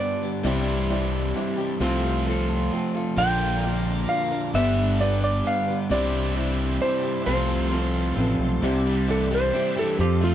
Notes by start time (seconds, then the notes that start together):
Already playing: G2 D3 G3 B3 D4 G4
0.00 B3 D4 G4 B4 D5
0.21 G3 B3 D4 B4
0.43 C2 C3 E3 G3 C4 D4 E4 G4 C5 D5
0.89 G3 D4 E4 G4 C5 D5
1.34 G3 D4 E4 G4 C5 D5
1.58 D4 E4 G4
1.80 C2 C3 F3 A3 C4 F4 A4 C5
2.26 F3 C4 F4 A4 C5
2.49 A5
2.71 F3 C4 F4 A4 C5 G5
2.95 C4 F4 A4 F5
3.16 A#1 A#2 D3 F3 A#3 D4 F4 A#4 D5 F5 G5 D6
3.63 F3 A#3 D4 F4 A#4 D5
4.08 F3 A#3 D4 F4 A#4 D5 F5
4.31 F3 A#3 D4 A#4
4.53 G1 G2 D3 G3 B3 D4 G4 B4 D5 E5 G5
4.99 G3 B3 D4 G4 B4 D5 F5
5.24 D5
5.45 G3 B3 D4 G4 B4 D5 F5
5.67 G3 B3 D4 B4
5.89 C2 C3 E3 G3 C4 D4 E4 G4 C5 D5 E5
6.35 G3 D4 E4 G4 C5 D5
6.80 G3 D4 E4 G4 C5 D5
7.03 D4 E4 G4
7.26 C2 C3 F3 A3 C4 F4 A4 C5 F5 C6
7.71 F3 C4 F4 A4 C5
7.99 B4
8.16 A1 F3 C4 F4 A4 B4
8.39 B1
8.62 C2 C3 G3 D4 E4 G4 C5 D5 E5 D6
8.86 G3
9.08 E3 G3 D4 E4 G4 A4 C5 D5
9.30 G3 D4 E4 G4
9.35 C5
9.53 G3 D4 E4 G4 C5 E5
9.76 E3 D4 E4 G4 A4
9.98 F2 F3 C4 F4 G4 A4 C5 F5 C6
10.21 A3 F4